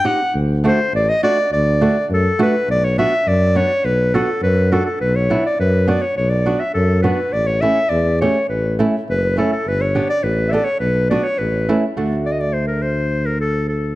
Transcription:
0.04 nylon-string guitar C4 D#4 G4, clarinet F#5
0.34 tuba D2
0.64 nylon-string guitar A3 D4 F#4, clarinet C5
0.93 tuba A1, clarinet D5
1.09 clarinet D#5
1.23 nylon-string guitar A3 D4 F#4, clarinet D5
1.52 tuba D2, clarinet D5
1.81 nylon-string guitar A3 D4 F#4
2.10 tuba F#2, clarinet A4
2.39 nylon-string guitar A3 D4 F#4, clarinet B4
2.68 tuba B1, clarinet D5
2.85 clarinet C#5
2.98 nylon-string guitar B3 D4 F#4, clarinet E5
3.27 tuba F#2, clarinet D5
3.55 nylon-string guitar B3 D4 F#4, clarinet C#5
3.84 tuba B1, clarinet B4
4.14 nylon-string guitar B3 D4 F#4, clarinet A4
4.42 tuba F#2, clarinet B4
4.72 nylon-string guitar B3 D4 F#4, clarinet A4
4.86 clarinet A4
5.01 tuba B1, clarinet B4
5.16 clarinet C#5
5.30 nylon-string guitar B3 D4 E4
5.46 clarinet D5
5.60 tuba F#2, clarinet B4
5.87 nylon-string guitar B3 D4 F#4, clarinet D5
6.02 clarinet C#5
6.17 tuba B1, clarinet C#5
6.30 clarinet D5
6.46 nylon-string guitar B3 D4 F#4
6.60 clarinet E5
6.74 tuba F#2, clarinet A4
7.02 nylon-string guitar B3 D4 F#4, clarinet B4
7.33 tuba A1, clarinet D5
7.47 clarinet C#5
7.61 nylon-string guitar A3 C#4 E4, clarinet E5
7.89 tuba E2, clarinet D5
8.21 nylon-string guitar A3 C#4 G4, clarinet C#5
8.49 tuba A1, clarinet B4
8.79 nylon-string guitar A3 C#4 E4
9.08 tuba F#1, clarinet B4
9.37 nylon-string guitar A3 C#4 E4, clarinet A4
9.52 clarinet A4
9.65 tuba G1, clarinet B4
9.81 clarinet C#5
9.95 nylon-string guitar B3 D4 G4
10.10 clarinet D5
10.23 tuba A1, clarinet B4
10.49 clarinet D5 E5
10.53 nylon-string guitar B3 D4 A4
10.65 clarinet C#5
10.80 tuba B1, clarinet B4
11.10 nylon-string guitar B3 D4 F#4, clarinet D5
11.24 clarinet C#5
11.38 tuba A1, clarinet B4
11.69 nylon-string guitar A3 C#4 E4
11.97 tuba D2, nylon-string guitar A3 D4 F#4
12.26 clarinet D5
12.32 clarinet D#5
12.40 clarinet D5
12.54 clarinet C5
12.67 clarinet A#4
12.82 clarinet C5
13.26 clarinet A#4
13.40 clarinet A4
13.69 clarinet A4

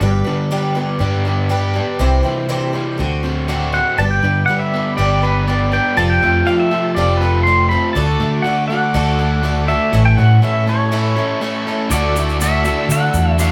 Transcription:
0.01 fingered electric bass G1, overdriven electric guitar G2, twelve-string acoustic guitar G3 D4 G4 B4
0.24 overdriven electric guitar D3, twelve-string acoustic guitar D4 G4 B4
0.51 twelve-string acoustic guitar G3 D4 G4 B4
0.75 overdriven electric guitar B3, twelve-string acoustic guitar D4 G4 B4
0.99 fingered electric bass G2, twelve-string acoustic guitar G3 D4 G4 B4
1.25 twelve-string acoustic guitar D4 G4 B4
1.49 twelve-string acoustic guitar G3 D4 G4 B4
1.74 twelve-string acoustic guitar D4 G4 B4
1.99 fingered electric bass C2, twelve-string acoustic guitar C3 E3 G3 C4 E4 C5
2.23 overdriven electric guitar E3, twelve-string acoustic guitar G3 C4 E4 C5
2.49 twelve-string acoustic guitar C3 E3 G3 C4 E4 C5
2.73 twelve-string acoustic guitar G3 C4 E4 C5
2.98 fingered electric bass D2, overdriven electric guitar D3, twelve-string acoustic guitar A3 C4 F#4 C5
3.23 twelve-string acoustic guitar C4 F#4 C5
3.48 twelve-string acoustic guitar D3 A3 C4 F#4 C5
3.73 twelve-string acoustic guitar C4 F#4 C5, pedal steel guitar F#5
3.98 fingered electric bass G1, overdriven electric guitar G2, twelve-string acoustic guitar G3 D4 G4 B4, string section G4 D5 B5, pedal steel guitar A5
4.11 pedal steel guitar G5
4.22 fingered electric bass G2, overdriven electric guitar D3, twelve-string acoustic guitar D4 G4 B4
4.46 twelve-string acoustic guitar G3 D4 G4, pedal steel guitar F#5
4.50 twelve-string acoustic guitar B4
4.59 pedal steel guitar E5
4.73 overdriven electric guitar B3, twelve-string acoustic guitar D4 G4 B4
4.97 fingered electric bass G1, twelve-string acoustic guitar G3 D4 G4 B4, pedal steel guitar D5
5.22 twelve-string acoustic guitar D4 G4 B4, pedal steel guitar B4
5.47 twelve-string acoustic guitar G3 D4 G4 B4, overdriven electric guitar B3, pedal steel guitar D5
5.72 twelve-string acoustic guitar D4 G4 B4, pedal steel guitar G5
5.97 fingered electric bass F1, twelve-string acoustic guitar F3 G3 C4 F4 A4, string section F4 A5, pedal steel guitar A5
6.10 pedal steel guitar G5
6.22 fingered electric bass F2, overdriven electric guitar A3, twelve-string acoustic guitar C4 F4 A4
6.46 overdriven electric guitar F3, twelve-string acoustic guitar G3 C4 F4 A4, pedal steel guitar F5
6.60 pedal steel guitar E5
6.71 overdriven electric guitar A3, twelve-string acoustic guitar C4 F4 A4
6.95 fingered electric bass F1, twelve-string acoustic guitar F3 G3 C4 F4 A4, overdriven electric guitar G4, pedal steel guitar D5
7.17 pedal steel guitar B4
7.22 twelve-string acoustic guitar C4 F4 A4
7.43 twelve-string acoustic guitar G3, overdriven electric guitar A3, pedal steel guitar C6
7.48 twelve-string acoustic guitar C4 F4 A4
7.69 twelve-string acoustic guitar F4 A4, pedal steel guitar B5
7.74 twelve-string acoustic guitar C4
7.93 fingered electric bass D2, twelve-string acoustic guitar D3 A3 D4 F#4, string section A4 F#5 D6, pedal steel guitar A5
7.97 twelve-string acoustic guitar A4
8.20 fingered electric bass D3, overdriven electric guitar A3, twelve-string acoustic guitar D4 F#4 A4
8.42 overdriven electric guitar D3, twelve-string acoustic guitar A3 D4, pedal steel guitar F#5
8.47 twelve-string acoustic guitar F#4 A4
8.68 overdriven electric guitar A3, twelve-string acoustic guitar A4, pedal steel guitar F#5
8.72 twelve-string acoustic guitar D4 F#4
8.94 fingered electric bass D2, twelve-string acoustic guitar D3 A3 D4 F#4 A4
9.19 twelve-string acoustic guitar D4 F#4 A4
9.43 twelve-string acoustic guitar A3 D4 F#4 A4
9.68 twelve-string acoustic guitar D4 F#4 A4, pedal steel guitar E5
9.93 fingered electric bass A1, twelve-string acoustic guitar A2 E3 A3 C#4 E4 A4, string section E5 C#6
10.05 pedal steel guitar G5
10.17 fingered electric bass A2, overdriven electric guitar E3, twelve-string acoustic guitar A3 C#4 E4 A4, pedal steel guitar F#5
10.42 overdriven electric guitar E3, twelve-string acoustic guitar A3 C#4 E4 A4, pedal steel guitar E5
10.67 twelve-string acoustic guitar A3 C#4 E4 A4, pedal steel guitar C#5
10.92 twelve-string acoustic guitar A2 E3 A3 C#4 E4 A4
11.16 twelve-string acoustic guitar A3 C#4 E4 A4
11.41 twelve-string acoustic guitar A3 C#4 E4 A4
11.67 twelve-string acoustic guitar A3 C#4 E4 A4
11.90 fingered electric bass D2, twelve-string acoustic guitar D3 A3 E4 F#4 A4, overdriven electric guitar D4, pedal steel guitar D5, string section D5 F#5 E6, shaker
12.16 overdriven electric guitar A3 D4, twelve-string acoustic guitar E4 F#4 A4, shaker
12.29 shaker
12.40 twelve-string acoustic guitar D3 A3 E4 F#4 A4, overdriven electric guitar D4, pedal steel guitar E5, shaker
12.65 overdriven electric guitar A3 D4, twelve-string acoustic guitar E4 F#4 A4, shaker
12.89 fingered electric bass D3, twelve-string acoustic guitar A3 E4 F#4 A4, pedal steel guitar F#5, shaker
13.14 fingered electric bass E2, twelve-string acoustic guitar E4 F#4 A4, shaker
13.39 twelve-string acoustic guitar D3 A3 E4 F#4 A4, overdriven electric guitar D4, pedal steel guitar F5, shaker

